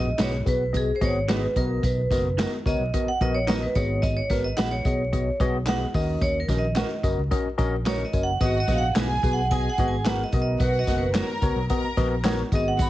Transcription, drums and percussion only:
0.19 snare, clap, closed hi-hat, tambourine
0.46 kick, closed hi-hat, tambourine
0.74 kick, closed hi-hat, tambourine
1.01 kick, snare, closed hi-hat, tambourine
1.28 snare, clap, closed hi-hat, tambourine
1.56 kick, closed hi-hat, tambourine
1.83 kick, closed hi-hat, tambourine
2.11 kick, snare, closed hi-hat, tambourine
2.38 snare, clap, closed hi-hat, tambourine
2.66 kick, closed hi-hat, tambourine
2.94 kick, closed hi-hat
3.21 kick, closed hi-hat
3.48 snare, clap, closed hi-hat, tambourine
3.75 kick, closed hi-hat, tambourine
4.03 kick, closed hi-hat, tambourine
4.30 kick, snare, closed hi-hat, tambourine
4.58 snare, clap, closed hi-hat, tambourine
4.85 kick, closed hi-hat, tambourine
5.13 kick, closed hi-hat
5.40 kick, closed hi-hat, tambourine
5.67 snare, clap, closed hi-hat, tambourine
5.94 kick, open hi-hat, tambourine
6.21 kick, closed hi-hat, tambourine
6.48 kick, snare, closed hi-hat, tambourine
6.76 snare, clap, closed hi-hat, tambourine
7.03 kick, closed hi-hat, tambourine
7.31 kick, closed hi-hat, tambourine
7.58 kick, closed hi-hat, tambourine
7.86 snare, clap, closed hi-hat, tambourine
8.13 kick, closed hi-hat, tambourine
8.41 kick, closed hi-hat, tambourine
8.68 kick, snare, closed hi-hat, tambourine
8.95 snare, clap, closed hi-hat, tambourine
9.23 kick, closed hi-hat, tambourine
9.51 kick, closed hi-hat
9.78 kick, closed hi-hat, tambourine
10.05 snare, clap, closed hi-hat, tambourine
10.32 kick, closed hi-hat, tambourine
10.60 kick, closed hi-hat, tambourine
10.87 kick, snare, closed hi-hat, tambourine
11.14 snare, clap, closed hi-hat, tambourine
11.42 kick, closed hi-hat, tambourine
11.69 kick, closed hi-hat
11.97 kick, snare, closed hi-hat, tambourine
12.24 snare, clap, closed hi-hat, tambourine
12.52 kick, closed hi-hat, tambourine
12.79 kick, closed hi-hat, tambourine

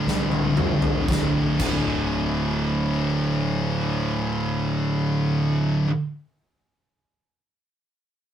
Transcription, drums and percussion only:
0.08 snare
0.32 high tom
0.57 mid tom
0.82 floor tom
1.08 kick, snare
1.60 kick, crash

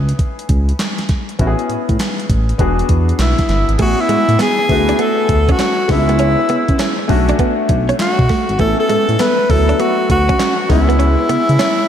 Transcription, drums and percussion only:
0.09 closed hi-hat
0.19 kick, closed hi-hat
0.39 closed hi-hat
0.49 kick, closed hi-hat
0.69 closed hi-hat
0.79 snare, clap, closed hi-hat
0.98 snare, closed hi-hat
1.09 kick, snare, closed hi-hat
1.29 closed hi-hat
1.39 kick, closed hi-hat
1.59 closed hi-hat
1.70 closed hi-hat
1.89 kick, closed hi-hat
1.99 snare, clap, closed hi-hat
2.20 closed hi-hat
2.30 kick, closed hi-hat
2.49 closed hi-hat
2.59 kick, closed hi-hat
2.79 closed hi-hat
2.89 kick, closed hi-hat
3.09 closed hi-hat
3.19 snare, clap, closed hi-hat
3.39 kick, snare, closed hi-hat
3.49 snare, closed hi-hat
3.69 closed hi-hat
3.79 kick, closed hi-hat, crash
4.09 closed hi-hat
4.29 closed hi-hat
4.39 snare, clap, closed hi-hat
4.69 kick, open hi-hat
4.89 closed hi-hat
4.99 closed hi-hat
5.29 kick, closed hi-hat
5.49 kick, closed hi-hat
5.59 snare, clap, closed hi-hat
5.89 kick, snare, open hi-hat
6.09 closed hi-hat
6.19 closed hi-hat
6.49 closed hi-hat
6.68 kick, closed hi-hat
6.79 snare, clap, closed hi-hat
7.09 kick, open hi-hat
7.29 closed hi-hat
7.39 kick, closed hi-hat
7.69 kick, closed hi-hat
7.89 closed hi-hat
7.99 snare, clap, closed hi-hat
8.19 kick
8.29 kick, snare, open hi-hat
8.49 closed hi-hat
8.59 kick, closed hi-hat
8.89 closed hi-hat
9.09 closed hi-hat
9.19 snare, clap, closed hi-hat
9.50 kick, open hi-hat
9.69 closed hi-hat
9.80 closed hi-hat
10.10 kick, closed hi-hat
10.29 kick, closed hi-hat
10.40 snare, clap, closed hi-hat
10.70 kick, snare, open hi-hat
10.90 closed hi-hat
11.00 closed hi-hat
11.29 closed hi-hat
11.49 closed hi-hat
11.59 snare, clap, closed hi-hat

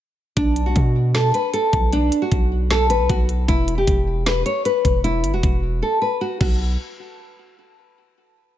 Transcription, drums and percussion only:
0.37 kick, closed hi-hat
0.56 closed hi-hat
0.76 kick, closed hi-hat
1.15 snare, closed hi-hat
1.34 closed hi-hat
1.54 closed hi-hat
1.73 kick, closed hi-hat
1.93 closed hi-hat
2.12 closed hi-hat
2.32 kick, closed hi-hat
2.71 snare, closed hi-hat
2.90 closed hi-hat
3.10 kick, closed hi-hat
3.29 closed hi-hat
3.48 kick, closed hi-hat
3.68 closed hi-hat
3.87 kick, closed hi-hat
4.26 snare, closed hi-hat
4.46 closed hi-hat
4.65 closed hi-hat
4.85 kick, closed hi-hat
5.04 closed hi-hat
5.24 closed hi-hat
5.43 kick, closed hi-hat
6.41 kick, crash

